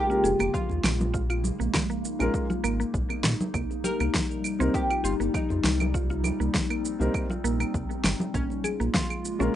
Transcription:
Already playing: ambient pad C#3 G#3 A#3 F4, oud G4
0.09 felt piano G#3 A#3 C#4 F4 A#4, synth pluck F4, shaker
0.24 analog synth bass F1, synth pluck G#4, high conga, shaker
0.39 analog synth bass F1, synth pluck A#3, muted conga, claves, shaker
0.54 synth pluck F3, oud F4, kick, shaker
0.70 analog synth bass D#2, muted conga, shaker
0.84 analog synth bass A#1, snare, high conga, claves, shaker
1.00 muted conga, high conga, low conga, shaker
1.14 ambient pad D#4, synth pluck F4, kick, shaker
1.30 synth pluck F4, muted conga, claves, shaker
1.44 low conga, shaker
1.60 analog synth bass A#1, synth pluck A#3, high conga, shaker
1.74 synth pluck F3, kick, snare, claves, shaker
1.90 synth pluck A#3, shaker
2.04 high conga, shaker
2.19 analog synth bass A#1, felt piano G#3 A#3 C#4 F4 A#4, muted conga, claves, shaker
2.34 kick, shaker
2.50 synth pluck F4, low conga, shaker
2.64 analog synth bass G#1, synth pluck A#3, claves, shaker
2.80 synth pluck A#3, shaker
2.94 analog synth bass A#1, kick, shaker
3.10 high conga, claves, shaker
3.24 analog synth bass A#2, snare, high conga, shaker
3.41 low conga, shaker
3.54 analog synth bass C2, ambient pad C3 G3, synth pluck A#3, kick, claves, shaker
3.71 muted conga, shaker
3.84 synth pluck G4, oud A#4, low conga, shaker
4.00 analog synth bass C2, synth pluck A#3, high conga, claves, shaker
4.14 synth pluck F3, kick, snare, shaker
4.31 shaker
4.43 high conga, claves, shaker
4.59 analog synth bass C2, felt piano G3 A#3 C4 D#4 A#4, synth pluck C4, muted conga, shaker
4.74 synth pluck D#4, oud G4, kick, shaker
4.90 synth pluck F4, claves, shaker
5.04 analog synth bass G1, oud F4, synth pluck G4, high conga, shaker
5.20 analog synth bass G1, synth pluck A#3, muted conga, shaker
5.34 synth pluck F3, oud D#4, kick, claves, shaker
5.50 analog synth bass F2, muted conga, shaker
5.64 analog synth bass C2, snare, high conga, shaker
5.80 muted conga, high conga, low conga, claves, shaker
5.94 ambient pad C4, synth pluck F4, kick, shaker
6.10 synth pluck F4, muted conga, shaker
6.24 low conga, claves, shaker
6.40 analog synth bass C2, synth pluck A#3, high conga, shaker
6.54 synth pluck F3, kick, snare, shaker
6.70 synth pluck A#3, claves, shaker
6.84 high conga, shaker
6.99 analog synth bass C2, felt piano G3 A#3 C4 D#4 A#4, muted conga, shaker
7.14 kick, claves, shaker
7.30 synth pluck F4, low conga, shaker
7.44 analog synth bass A#1, synth pluck A#3, shaker
7.60 synth pluck A#3, claves, shaker
7.74 analog synth bass C2, kick, shaker
7.91 high conga, shaker
8.04 analog synth bass G1, snare, high conga, claves, shaker
8.20 low conga, shaker
8.34 analog synth bass A#1, ambient pad C#3 G#3 A#3 F4, synth pluck A#3, oud C#4, kick, shaker
8.50 muted conga, shaker
8.64 synth pluck G#4, low conga, claves, shaker
8.80 analog synth bass A#1, synth pluck A#3, high conga, shaker
8.94 synth pluck F3, oud F4, kick, snare, shaker
9.10 claves, shaker
9.25 high conga, shaker
9.39 analog synth bass A#1, felt piano G#3 A#3 C#4 F4 A#4, synth pluck C#4, muted conga, shaker

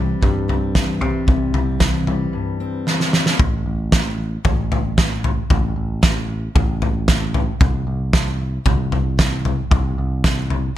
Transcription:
Already playing: picked electric bass C2, steel-string acoustic guitar E3 G3 C4
0.21 steel-string acoustic guitar G2, picked electric bass G2, kick, floor tom
0.48 steel-string acoustic guitar C4, floor tom
0.75 steel-string acoustic guitar E3, kick, snare, floor tom
1.01 picked electric bass C3, steel-string acoustic guitar G3, floor tom
1.27 picked electric bass C2, steel-string acoustic guitar C3, kick, floor tom
1.54 picked electric bass C2, steel-string acoustic guitar C4, floor tom
1.80 steel-string acoustic guitar E3, kick, snare, floor tom
2.07 steel-string acoustic guitar G3, floor tom
2.33 steel-string acoustic guitar G2
2.60 steel-string acoustic guitar C4
2.87 steel-string acoustic guitar E3, snare
3.00 snare
3.13 steel-string acoustic guitar G3, snare
3.26 snare
3.39 picked electric bass A1, kick, floor tom
3.66 picked electric bass A1
3.92 kick, snare
4.45 picked electric bass A1, kick, floor tom
4.72 floor tom
4.98 kick, snare
5.24 floor tom
5.50 picked electric bass A1, kick, floor tom
5.76 picked electric bass A1
6.03 kick, snare
6.55 picked electric bass A1, kick, floor tom
6.82 floor tom
7.08 kick, snare
7.34 floor tom
7.61 picked electric bass C2, kick, floor tom
7.87 picked electric bass C2
8.13 kick, snare
8.66 picked electric bass C2, kick, floor tom
8.92 floor tom
9.19 kick, snare
9.45 floor tom
9.71 picked electric bass C2, kick, floor tom
9.98 picked electric bass C2
10.24 kick, snare
10.50 floor tom

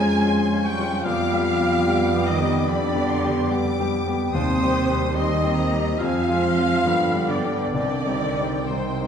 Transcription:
Already playing: double bass section F2, grand piano F2, bassoon F3, trombone section F3 C#4, cello section G#3, clarinet C#4, french horn section G#4, viola section G#5, violin section G#5 A#5, oboe G#5, flute section G#5
0.00 grand piano G#3 C#4 F4
0.25 grand piano G#3 C#4 F4, violin section C6
0.53 grand piano G#3 C#4 F4
0.64 cello section G3, french horn section G4, oboe G5, violin section G5 C#6, viola section G5
0.79 grand piano G#3 C#4 F4
1.04 double bass section F2, grand piano F2, cello section F3, bassoon G3, trombone section G3 B3, clarinet B3, french horn section F4, oboe F5, violin section F5 D6, viola section F5, flute section G5
1.33 grand piano G3 B3 G4
1.46 violin section D6
1.60 grand piano G3 B3 G4
1.87 grand piano G3 B3 G4
2.14 grand piano G3 B3 G4
2.26 cello section D#3, french horn section D#4, oboe D#5, violin section D#5, viola section D#5
2.40 grand piano G3 B3 G4
2.67 grand piano F2, cello section D3, trombone section G3 B3, french horn section D4, oboe D5, violin section D5 B5, viola section D5
2.96 grand piano G3 B3 G4
3.10 violin section C6
3.24 grand piano G3 B3 G4
3.50 grand piano G3 B3 G4, violin section D6
3.80 grand piano G3 B3 G4
4.08 grand piano G3 B3 G4
4.33 double bass section D#2, grand piano D#2, cello section C3, trombone section G3 C4, clarinet C4, french horn section C4, viola section C5, oboe C5, violin section C5 D#6
4.62 grand piano G3 C4 G4
4.89 grand piano G3 C4 G4
5.15 cello section D#3, grand piano G3 C4 G4, trombone section G3 C4, french horn section D#4, viola section D#5, oboe D#5, violin section D#5 C6
5.43 grand piano G3 C4 G4
5.57 violin section A#5
5.73 grand piano G3 C4 G4
5.99 double bass section F2, grand piano F2, bassoon F3, cello section F3, trombone section F3 C4, french horn section F4, oboe F5, viola section F5, violin section F5 G#5, flute section G#5
6.28 grand piano G#3 C4 F4
6.43 violin section C6
6.57 grand piano G#3 C4 F4
6.85 double bass section G2, grand piano G2, bassoon D3, trombone section D3 B3, clarinet B3, flute section G5, violin section B5
7.14 grand piano G3 B3 D4
7.29 cello section D3, french horn section D4, oboe D5, viola section D5, violin section D5 G5
7.44 grand piano G3 B3 D4
7.74 grand piano C2, double bass section C2, cello section D3, bassoon D#3, trombone section D#3 C4, clarinet C4, french horn section D4, viola section D5, oboe D5, violin section D5 G5
8.06 grand piano G3 C4 D#4
8.38 grand piano G3 C4 D#4
8.68 cello section C3, trombone section D#3 C4, grand piano G3 C4 D#4, french horn section C4, oboe C5, viola section C5, violin section C5
9.00 grand piano G3 C4 D#4

